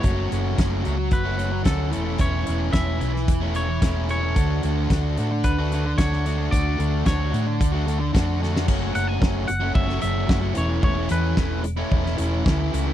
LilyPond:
<<
  \new Staff \with { instrumentName = "Clean electric guitar" } { \time 4/4 \key fis \minor \tempo 4 = 111 cis''2 b'4 a'4 | cis''4 e''4 r8 cis''4 cis''8~ | cis''2 b'4 cis''4 | d''4 cis''4 r2 |
r8 fis''16 gis''8. fis''8 e''8 e''4 cis''8 | cis''8 b'4 r2 r8 | }
  \new Staff \with { instrumentName = "Distorted electric guitar" } { \time 4/4 \key fis \minor <fis a cis' fis'>8 <fis a cis' fis'>8 <fis a cis' fis'>8 <fis a cis' fis'>8. <a cis' fis'>16 <fis a cis' fis'>8 <fis a cis' fis'>8 <e a cis' e'>16 <a cis' e'>16 | <e a cis' e'>8 <e a cis' e'>8 <e a cis' e'>8 <e a cis' e'>8. <a cis' e'>16 <e a cis' e'>8 <e a cis' e'>8 <e a cis' e'>16 <a cis' e'>16 | <d a d' fis'>8 <d a d' fis'>8 <d a d' fis'>8 <d a d' fis'>8. <a d' fis'>16 <d a d' fis'>8 <d a d' fis'>8 <d a d' fis'>16 <a d' fis'>16 | <d a d' fis'>8 <d a d' fis'>8 <d a d' fis'>8 <d a d' fis'>8. <a d' fis'>16 <d a d' fis'>8 <d a d' fis'>8 <d a d' fis'>16 <a d' fis'>16 |
<fis a cis' fis'>16 <a cis' fis'>16 <fis a cis' fis'>8 <fis a cis' fis'>8. <a cis' fis'>8 <a cis' fis'>16 <fis a cis' fis'>8 <fis a cis' fis'>16 <a cis' fis'>16 <e a cis' e'>16 <a cis' e'>16 | <e a cis' e'>16 <a cis' e'>16 <e a cis' e'>8 <e a cis' e'>8. <a cis' e'>8 <a cis' e'>16 <e a cis' e'>8 <e a cis' e'>16 <a cis' e'>16 <e a cis' e'>16 <a cis' e'>16 | }
  \new Staff \with { instrumentName = "Fingered electric bass" } { \clef bass \time 4/4 \key fis \minor fis,,8 fis,,8 fis,,8 cis,8 fis,,4 d,8 e,,8 | e,,8 e,,8 e,,8 b,,8 e,,4 e,,4 | d,8 d,8 d,8 a,8 d,4 d,4 | d,8 d,8 d,8 a,8 d,4 f,4 |
fis,,8 fis,,8 fis,,8 fis,,8 fis,,8 fis,,8 fis,,8 e,,8 | e,,8 e,8 e,,4 e,,8 e,,8 d,8 cis,8 | }
  \new DrumStaff \with { instrumentName = "Drums" } \drummode { \time 4/4 <hh bd>8 hh8 <hh bd sn>8 hh8 <hh bd>8 hh8 <hh bd sn>8 hh8 | <hh bd>8 hh8 <hh bd sn>8 hh16 sn16 <hh bd>8 hh8 <hh bd sn>8 hh8 | <hh bd>8 hh8 <hh bd sn>8 hh8 <hh bd>8 hh8 <hh bd sn>16 sn16 hh8 | <hh bd>8 hh8 <hh bd sn>8 hh8 <hh bd>8 hh8 <hh bd sn>8 sn16 sn16 |
<cymc bd>8 hh8 <bd sn>8 hh8 bd16 sn16 hh8 <bd sn>8 hh8 | bd8 hh8 <bd sn>8 hh8 bd16 sn16 hh8 <bd sn>8 hh8 | }
>>